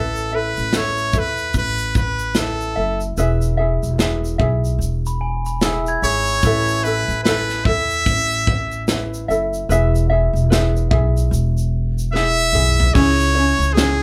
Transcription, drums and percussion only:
0.16 shaker medium
0.57 shaker soft
0.73 snare medium
0.73 shaker medium
0.97 shaker soft
1.13 kick medium
1.13 shaker soft
1.37 shaker soft
1.53 kick medium
1.53 shaker medium
1.78 shaker soft
1.95 kick medium
1.95 shaker medium
2.19 shaker soft
2.35 snare medium
2.35 shaker medium
2.61 shaker soft
3.01 shaker soft
3.17 shaker medium
3.42 shaker medium
3.83 shaker soft
3.99 snare medium
3.99 shaker medium
4.25 shaker soft
4.40 kick medium
4.65 shaker soft
4.82 shaker medium
5.06 shaker soft
5.46 shaker soft
5.61 snare loud
5.61 shaker medium
5.87 shaker medium
6.03 shaker soft
6.27 shaker soft
6.42 kick loud
6.42 shaker medium
6.68 shaker medium
6.85 shaker soft
7.10 shaker soft
7.25 snare loud
7.25 shaker medium
7.49 snare soft
7.49 shaker soft
7.65 kick medium
7.91 shaker soft
8.06 kick medium
8.06 shaker medium
8.31 shaker soft
8.47 kick medium
8.72 shaker soft
8.88 snare loud
8.88 shaker medium
9.14 shaker medium
9.31 shaker soft
9.54 shaker soft
9.71 shaker medium
9.95 shaker medium
10.36 shaker soft
10.52 snare loud
10.52 shaker medium
10.76 shaker soft
10.91 kick loud
11.17 shaker medium
11.33 shaker medium
11.58 shaker medium
11.99 shaker medium
12.15 snare medium
12.55 mid tom medium
12.80 floor tom medium
12.95 kick loud
12.95 crash medium
13.20 shaker medium
13.62 shaker soft
13.77 snare loud
13.77 shaker medium

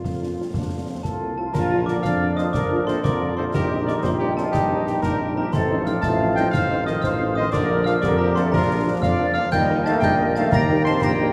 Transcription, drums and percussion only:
0.04 concert bass drum medium
0.04 snare medium
0.54 concert bass drum medium
0.54 snare medium
1.05 concert bass drum medium
1.05 snare medium
1.55 concert bass drum medium
1.55 snare medium
1.55 crash medium
1.88 snare medium
2.05 concert bass drum medium
2.05 snare medium
2.38 snare medium
2.54 concert bass drum medium
2.54 snare medium
2.88 snare medium
3.04 concert bass drum medium
3.04 snare medium
3.54 concert bass drum medium
3.54 snare medium
3.54 crash soft
3.88 snare medium
4.04 concert bass drum medium
4.04 snare medium
4.38 snare medium
4.54 concert bass drum medium
4.54 snare medium
4.87 snare medium
5.03 concert bass drum medium
5.03 snare medium
5.53 concert bass drum loud
5.53 snare medium
5.53 crash soft
5.86 snare medium
6.03 concert bass drum medium
6.03 snare medium
6.37 snare medium
6.54 concert bass drum medium
6.54 snare medium
6.87 snare medium
7.04 concert bass drum medium
7.04 snare medium
7.53 concert bass drum medium
7.53 snare medium
7.53 crash soft
7.86 snare medium
8.03 concert bass drum medium
8.03 snare medium
8.36 snare medium
8.53 concert bass drum medium
8.53 snare medium
9.03 concert bass drum medium
9.03 snare medium
9.52 concert bass drum loud
9.52 snare medium
9.52 crash medium
9.86 snare medium
10.02 concert bass drum medium
10.02 snare medium
10.35 snare medium
10.52 concert bass drum loud
10.52 snare medium
10.86 snare medium
11.02 concert bass drum medium
11.02 snare medium

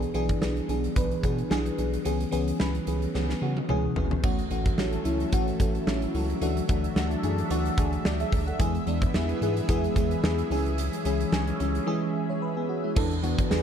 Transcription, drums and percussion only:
0.02 closed hi-hat soft
0.14 closed hi-hat medium
0.29 kick medium
0.29 closed hi-hat soft
0.42 snare medium
0.57 closed hi-hat soft
0.69 closed hi-hat medium
0.84 closed hi-hat soft
0.96 kick medium
0.96 closed hi-hat medium
1.11 closed hi-hat soft
1.23 kick medium
1.23 closed hi-hat medium
1.38 closed hi-hat soft
1.51 snare loud
1.66 closed hi-hat medium
1.78 closed hi-hat medium
1.93 closed hi-hat soft
2.05 closed hi-hat medium
2.20 closed hi-hat soft
2.32 closed hi-hat medium
2.48 closed hi-hat soft
2.60 snare loud
2.75 closed hi-hat soft
2.87 closed hi-hat medium
3.02 closed hi-hat soft
3.14 snare soft
3.29 snare medium
3.57 high tom medium
3.69 mid tom medium
3.96 floor tom medium
4.11 floor tom medium
4.24 kick loud
4.24 crash medium
4.39 closed hi-hat soft
4.51 closed hi-hat medium
4.66 kick medium
4.66 closed hi-hat soft
4.78 snare medium
4.93 closed hi-hat soft
5.05 closed hi-hat medium
5.20 closed hi-hat soft
5.32 kick medium
5.32 closed hi-hat medium
5.48 closed hi-hat soft
5.60 kick medium
5.60 closed hi-hat medium
5.75 closed hi-hat soft
5.87 snare loud
6.02 closed hi-hat medium
6.15 open hi-hat medium
6.30 closed hi-hat soft
6.42 closed hi-hat medium
6.57 closed hi-hat soft
6.69 kick medium
6.69 closed hi-hat medium
6.84 closed hi-hat soft
6.96 snare loud
7.11 closed hi-hat soft
7.23 closed hi-hat medium
7.38 closed hi-hat soft
7.51 closed hi-hat medium
7.66 closed hi-hat soft
7.78 kick medium
7.78 closed hi-hat medium
7.93 closed hi-hat soft
8.05 snare loud
8.20 closed hi-hat medium
8.32 kick medium
8.32 open hi-hat medium
8.48 closed hi-hat medium
8.60 kick loud
8.60 closed hi-hat loud
8.75 closed hi-hat soft
8.87 closed hi-hat medium
9.02 kick medium
9.02 closed hi-hat soft
9.14 snare loud
9.29 closed hi-hat soft
9.42 closed hi-hat medium
9.57 closed hi-hat medium
9.69 kick loud
9.69 closed hi-hat medium
9.84 closed hi-hat soft
9.96 kick medium
9.96 closed hi-hat medium
10.11 closed hi-hat soft
10.24 snare loud
10.38 closed hi-hat medium
10.51 open hi-hat medium
10.66 closed hi-hat soft
10.78 closed hi-hat loud
10.93 closed hi-hat medium
11.05 closed hi-hat medium
11.20 closed hi-hat soft
11.33 snare loud
11.47 closed hi-hat soft
11.60 closed hi-hat medium
11.75 closed hi-hat medium
12.96 kick loud
12.96 crash loud
13.11 closed hi-hat soft
13.23 closed hi-hat medium
13.38 kick medium
13.38 closed hi-hat medium
13.51 snare loud

